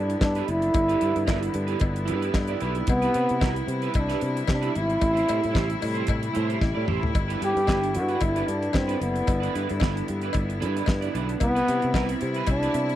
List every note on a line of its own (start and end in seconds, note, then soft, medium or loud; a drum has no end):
0.00 0.15 G2 medium
0.00 2.84 D3 medium
0.00 11.37 G3 medium
0.00 4.97 B3 medium
0.00 0.21 D4 medium
0.00 11.37 E4 medium
0.10 muted clean electric guitar stroke soft
0.10 closed hi-hat soft
0.21 0.41 G2 loud
0.21 0.51 D4 loud
0.21 muted clean electric guitar stroke soft
0.21 kick loud
0.21 snare loud
0.21 clap medium
0.21 cowbell medium
0.35 0.46 E4 medium
0.35 0.48 G4 medium
0.35 0.48 B4 medium
0.35 closed hi-hat soft
0.48 0.68 F#1 medium
0.48 1.55 E4 loud
0.48 muted clean electric guitar stroke soft
0.48 closed hi-hat medium
0.62 muted clean electric guitar stroke soft
0.62 closed hi-hat soft
0.74 0.94 G1 loud
0.74 muted clean electric guitar stroke soft
0.74 kick loud
0.74 closed hi-hat medium
0.74 cowbell medium
0.88 1.00 E4 medium
0.88 1.00 G4 medium
0.88 1.01 B4 medium
0.88 closed hi-hat soft
1.01 1.13 G2 medium
1.01 1.19 E4 medium
1.01 1.15 G4 medium
1.01 1.14 B4 medium
1.01 closed hi-hat medium
1.16 1.25 G2 medium
1.16 muted clean electric guitar stroke medium
1.16 closed hi-hat soft
1.26 1.48 G1 medium
1.26 1.49 E4 medium
1.26 1.42 G4 medium
1.26 1.41 B4 medium
1.26 kick loud
1.26 snare loud
1.26 clap medium
1.26 cowbell medium
1.42 muted clean electric guitar stroke soft
1.42 closed hi-hat medium
1.53 1.74 G2 medium
1.53 muted clean electric guitar stroke soft
1.53 closed hi-hat medium
1.67 1.78 E4 medium
1.67 1.78 G4 medium
1.67 1.79 B4 medium
1.67 closed hi-hat soft
1.79 2.11 G1 loud
1.79 muted clean electric guitar stroke soft
1.79 kick loud
1.79 closed hi-hat medium
1.79 cowbell medium
1.94 muted clean electric guitar stroke soft
1.94 closed hi-hat soft
2.05 2.28 G2 medium
2.05 2.22 E4 medium
2.05 2.21 G4 medium
2.05 2.20 B4 medium
2.05 closed hi-hat medium
2.21 2.32 E4 soft
2.21 2.33 G4 medium
2.21 2.33 B4 medium
2.21 closed hi-hat soft
2.33 2.54 G2 medium
2.33 muted clean electric guitar stroke soft
2.33 kick loud
2.33 snare loud
2.33 clap medium
2.33 cowbell medium
2.48 2.59 E4 medium
2.48 2.60 G4 medium
2.48 2.62 D5 medium
2.48 closed hi-hat soft
2.60 2.81 B1 medium
2.60 2.83 E4 medium
2.60 2.76 G4 medium
2.60 2.75 B4 medium
2.60 closed hi-hat medium
2.75 muted clean electric guitar stroke soft
2.75 closed hi-hat soft
2.87 3.08 C2 loud
2.87 7.11 C3 medium
2.87 3.65 B3 loud
2.87 muted clean electric guitar stroke soft
2.87 kick loud
2.87 closed hi-hat medium
2.87 cowbell medium
3.02 3.12 E4 medium
3.02 3.14 G4 medium
3.02 3.14 B4 medium
3.02 closed hi-hat soft
3.14 3.26 C3 medium
3.14 3.32 E4 medium
3.14 3.28 G4 medium
3.14 3.27 B4 medium
3.14 closed hi-hat medium
3.28 3.39 C3 medium
3.28 muted clean electric guitar stroke soft
3.28 closed hi-hat soft
3.40 3.61 C2 loud
3.40 3.63 E4 medium
3.40 3.55 G4 medium
3.40 3.54 B4 medium
3.40 kick loud
3.40 snare loud
3.40 clap medium
3.40 cowbell medium
3.55 muted clean electric guitar stroke soft
3.55 closed hi-hat medium
3.67 3.87 C3 medium
3.67 muted clean electric guitar stroke soft
3.67 closed hi-hat medium
3.82 3.92 E4 medium
3.82 3.93 G4 medium
3.82 3.93 B4 medium
3.82 closed hi-hat soft
3.93 4.15 C2 medium
3.93 muted clean electric guitar stroke soft
3.93 kick medium
3.93 closed hi-hat medium
3.93 cowbell medium
3.99 4.47 D4 medium
4.09 4.21 E4 medium
4.09 4.21 G4 medium
4.09 4.22 B4 medium
4.09 snare soft
4.09 closed hi-hat soft
4.21 4.42 C3 medium
4.21 muted clean electric guitar stroke soft
4.21 closed hi-hat medium
4.36 muted clean electric guitar stroke soft
4.36 closed hi-hat soft
4.47 4.68 C3 loud
4.47 muted clean electric guitar stroke soft
4.47 kick loud
4.47 snare loud
4.47 clap medium
4.47 cowbell medium
4.52 4.80 D4 medium
4.62 4.72 E4 medium
4.62 4.72 G4 medium
4.62 4.73 B4 medium
4.62 closed hi-hat soft
4.73 4.95 G#1 medium
4.73 muted clean electric guitar stroke soft
4.73 closed hi-hat medium
4.79 5.83 E4 loud
4.88 muted clean electric guitar stroke soft
4.88 closed hi-hat soft
5.00 5.22 A1 loud
5.00 7.13 A3 medium
5.00 muted clean electric guitar stroke soft
5.00 kick loud
5.00 closed hi-hat medium
5.00 cowbell medium
5.13 5.24 E4 medium
5.13 5.25 G4 medium
5.13 5.26 C5 medium
5.13 closed hi-hat soft
5.25 5.45 E4 medium
5.25 5.41 G4 medium
5.25 5.39 C5 medium
5.25 closed hi-hat medium
5.25 cowbell medium
5.30 5.40 A2 medium
5.40 muted clean electric guitar stroke soft
5.40 closed hi-hat soft
5.45 5.53 A2 medium
5.51 5.75 E4 medium
5.51 5.67 G4 medium
5.51 5.66 C5 medium
5.55 5.75 A1 medium
5.55 kick loud
5.55 snare loud
5.55 clap medium
5.55 cowbell medium
5.67 muted clean electric guitar stroke soft
5.67 closed hi-hat soft
5.80 6.02 A2 medium
5.80 muted clean electric guitar stroke soft
5.80 open hi-hat medium
5.80 cowbell medium
5.94 6.05 E4 medium
5.94 6.06 G4 medium
5.94 6.07 C5 medium
5.94 closed hi-hat soft
6.07 6.28 A2 medium
6.07 muted clean electric guitar stroke soft
6.07 kick medium
6.07 closed hi-hat medium
6.07 cowbell medium
6.22 muted clean electric guitar stroke soft
6.22 closed hi-hat soft
6.33 6.55 A2 medium
6.33 6.48 E4 medium
6.33 6.47 G4 medium
6.33 6.46 C5 medium
6.33 closed hi-hat medium
6.47 6.58 E4 soft
6.47 6.59 G4 medium
6.47 6.59 C5 medium
6.47 closed hi-hat soft
6.59 6.72 A1 medium
6.59 muted clean electric guitar stroke soft
6.59 kick medium
6.59 snare medium
6.59 cowbell medium
6.75 6.85 A2 medium
6.75 6.85 E4 soft
6.75 6.86 G4 soft
6.75 6.88 D5 medium
6.87 6.99 A1 medium
6.87 7.09 E4 medium
6.87 7.02 G4 medium
6.87 7.01 C5 medium
6.87 mid tom medium
7.02 7.11 A2 medium
7.02 muted clean electric guitar stroke soft
7.02 floor tom medium
7.13 7.35 G1 loud
7.13 11.37 D3 medium
7.13 12.96 B3 medium
7.13 muted clean electric guitar stroke soft
7.13 kick loud
7.13 closed hi-hat medium
7.13 cowbell medium
7.28 7.38 D4 medium
7.28 7.39 E4 medium
7.28 7.41 B4 medium
7.28 closed hi-hat soft
7.40 7.53 G2 medium
7.40 7.58 D4 medium
7.40 7.56 E4 medium
7.40 7.54 B4 medium
7.40 closed hi-hat medium
7.45 7.98 G4 loud
7.56 7.65 G2 medium
7.56 muted clean electric guitar stroke soft
7.56 closed hi-hat soft
7.66 7.97 G1 medium
7.66 7.89 D4 medium
7.66 7.82 E4 medium
7.66 7.81 B4 medium
7.66 kick loud
7.66 snare loud
7.66 clap medium
7.66 cowbell medium
7.82 muted clean electric guitar stroke soft
7.82 closed hi-hat soft
7.94 8.15 G2 loud
7.94 8.26 F#4 loud
7.94 muted clean electric guitar stroke soft
7.94 closed hi-hat medium
8.09 8.19 D4 soft
8.09 8.20 E4 medium
8.09 8.20 B4 medium
8.09 closed hi-hat soft
8.20 8.41 G1 loud
8.20 muted clean electric guitar stroke soft
8.20 kick medium
8.20 closed hi-hat medium
8.20 cowbell medium
8.24 8.50 E4 medium
8.36 8.45 D4 medium
8.36 8.46 E4 medium
8.36 8.47 B4 medium
8.36 closed hi-hat soft
8.47 8.68 G2 medium
8.47 8.77 D4 medium
8.47 muted clean electric guitar stroke soft
8.47 closed hi-hat medium
8.62 muted clean electric guitar stroke soft
8.62 closed hi-hat soft
8.73 8.94 G2 loud
8.73 9.02 C4 medium
8.73 muted clean electric guitar stroke soft
8.73 kick loud
8.73 snare loud
8.73 clap medium
8.73 cowbell medium
8.88 8.98 D4 medium
8.88 8.98 E4 medium
8.88 8.99 B4 medium
8.88 closed hi-hat medium
8.99 9.21 F#1 loud
8.99 9.78 B3 medium
8.99 muted clean electric guitar stroke soft
8.99 closed hi-hat medium
9.14 muted clean electric guitar stroke soft
9.14 closed hi-hat soft
9.26 9.48 G1 loud
9.26 muted clean electric guitar stroke soft
9.26 kick loud
9.26 closed hi-hat medium
9.26 cowbell medium
9.40 9.52 D4 medium
9.40 9.53 E4 medium
9.40 9.54 B4 medium
9.40 closed hi-hat soft
9.53 9.66 G2 medium
9.53 9.72 D4 medium
9.53 9.69 E4 medium
9.53 9.68 B4 medium
9.53 closed hi-hat medium
9.69 9.79 G2 medium
9.69 muted clean electric guitar stroke medium
9.69 closed hi-hat soft
9.80 10.01 G1 medium
9.80 10.03 D4 medium
9.80 9.96 E4 medium
9.80 9.94 B4 medium
9.80 kick loud
9.80 snare loud
9.80 clap medium
9.80 cowbell medium
9.96 muted clean electric guitar stroke soft
9.96 closed hi-hat soft
10.08 10.28 G2 medium
10.08 muted clean electric guitar stroke soft
10.08 closed hi-hat medium
10.21 10.33 D4 medium
10.21 10.34 E4 medium
10.21 10.35 B4 medium
10.21 closed hi-hat soft
10.33 10.63 G1 loud
10.33 muted clean electric guitar stroke soft
10.33 kick medium
10.33 closed hi-hat medium
10.33 cowbell medium
10.49 muted clean electric guitar stroke soft
10.49 closed hi-hat soft
10.60 10.81 G2 loud
10.60 10.76 D4 medium
10.60 10.75 E4 medium
10.60 10.75 B4 medium
10.60 closed hi-hat medium
10.76 10.85 D4 soft
10.76 10.87 E4 medium
10.76 10.87 B4 medium
10.76 closed hi-hat soft
10.86 11.08 G2 loud
10.86 muted clean electric guitar stroke soft
10.86 kick loud
10.86 snare loud
10.86 clap medium
10.86 cowbell medium
11.01 11.12 D4 soft
11.01 11.14 E4 medium
11.01 11.15 D5 soft
11.01 closed hi-hat soft
11.14 11.34 B1 medium
11.14 11.36 D4 medium
11.14 11.28 E4 medium
11.14 11.27 B4 medium
11.14 closed hi-hat medium
11.29 muted clean electric guitar stroke soft
11.29 closed hi-hat soft
11.40 11.61 C2 loud
11.40 12.96 C3 medium
11.40 12.96 G3 medium
11.40 12.17 B3 loud
11.40 12.96 E4 medium
11.40 muted clean electric guitar stroke soft
11.40 kick loud
11.40 closed hi-hat medium
11.40 cowbell medium
11.55 11.66 C4 medium
11.55 11.66 E4 medium
11.55 11.67 B4 medium
11.55 closed hi-hat soft
11.67 11.79 C3 medium
11.67 11.85 C4 medium
11.67 11.82 E4 medium
11.67 11.81 B4 medium
11.67 closed hi-hat medium
11.82 11.92 C3 medium
11.82 muted clean electric guitar stroke soft
11.82 closed hi-hat soft
11.94 12.14 C2 medium
11.94 12.16 C4 medium
11.94 12.09 E4 medium
11.94 12.08 B4 medium
11.94 kick loud
11.94 snare loud
11.94 clap medium
11.94 cowbell medium
12.09 muted clean electric guitar stroke soft
12.09 closed hi-hat medium
12.21 12.41 C3 medium
12.21 muted clean electric guitar stroke soft
12.21 closed hi-hat medium
12.34 12.47 C4 medium
12.34 12.48 E4 medium
12.34 12.48 B4 medium
12.34 closed hi-hat soft
12.47 12.67 C2 loud
12.47 muted clean electric guitar stroke soft
12.47 kick medium
12.47 closed hi-hat medium
12.47 cowbell medium
12.51 12.96 D4 loud
12.63 12.74 C4 medium
12.63 12.74 E4 medium
12.63 12.75 B4 medium
12.63 closed hi-hat soft
12.74 12.94 C3 medium
12.74 muted clean electric guitar stroke soft
12.74 closed hi-hat medium
12.89 muted clean electric guitar stroke soft
12.89 closed hi-hat soft